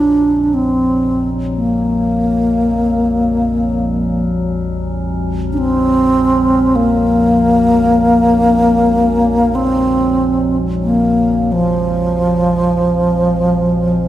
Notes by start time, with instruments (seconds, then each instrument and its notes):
Already playing: synth drone A#1 F2, bass flute D4
0.44 bass flute D4
0.54 bass flute C4
1.55 bass flute A#3
5.53 bass flute D4
5.58 bass flute C4
6.76 bass flute A#3
9.55 bass flute C4
10.83 bass flute A#3
11.52 bass flute F3